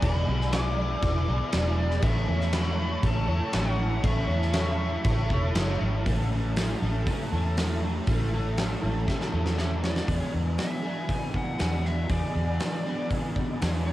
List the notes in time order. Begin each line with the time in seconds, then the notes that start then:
0.02 E1 E3 G#3 B3 E4 G#4 D5 B5, kick, crash
0.27 B1 B3 E4 G#4 D5
0.41 snare
0.52 B3 E4 G#4 D5 D6, snare, crash
0.78 B3 E4 G#4 D5
1.02 E1, kick, crash
1.28 B1 B3 E4 G#4 D5
1.52 E1 B3 E4 G#4 D5, snare, crash
1.79 D5
1.91 snare
2.02 A1 A3 C#4 E4 A4 C#5 E5, kick, crash
2.28 E2 E4 A4 C#5
2.41 snare
2.52 C#4 E4 A4 C#5 B5, snare, crash
2.78 E4 A4 C#5
3.03 A1 A5, kick, crash
3.28 E2 E4 A4 C#5
3.53 A1 C#4 E4 A4 C#5 F#5, snare, crash
4.03 A1 A3 C#4 E4 A4 C#5 E5, kick, crash
4.28 E2 E4 A4 C#5
4.42 snare
4.52 C#4 E4 A4 C#5, snare, crash
4.78 E4 A4 C#5
5.04 A1, kick, crash
5.30 E1 E4 A4 C#5, kick
5.54 F#1 C#4 E4 A4 C#5, snare, crash
5.81 G#1
6.06 A1 A3 C#4 E4 A4, kick, open hi-hat
6.31 C#4 E4 A4
6.56 A3 C#4 E4 A4, snare, open hi-hat
6.82 A1 A3 C#4 E4 A4
7.07 A3 C#4 E4 A4, kick, open hi-hat
7.32 E2 C#4 E4 A4
7.57 A3 C#4 E4 A4, snare, open hi-hat
7.83 C#4 E4 A4
8.07 A1 A3 C#4 E4 A4, kick, open hi-hat
8.33 C#4 E4 A4
8.57 A3 C#4 E4 A4, snare, open hi-hat
8.81 A1 A3 C#4 E4 A4
9.07 A3 C#4 E4 A4, kick, snare
9.21 snare
9.32 E2 C#4 E4 A4
9.46 snare
9.57 A3 C#4 E4 A4, snare
9.83 C#4 E4 A4 D5, snare
9.96 snare
10.07 E2 E3 B3 D4 G#4, kick, open hi-hat
10.18 C#5
10.34 E2
10.58 E5, snare, open hi-hat
10.83 E3 B3 D4 G#4
11.09 G#5, kick, open hi-hat
11.34 F#5, kick
11.58 E2 E3 B3 D4 G#4 F#5, snare, open hi-hat
11.85 E5, snare
12.09 E2 E3 B3 D4 G#4 D5, kick, open hi-hat
12.35 E2
12.60 snare, open hi-hat
12.86 E3 B3 D4 G#4
13.11 kick, open hi-hat
13.36 kick
13.62 E2 E3 B3 D4 G#4, snare, open hi-hat
13.87 C#5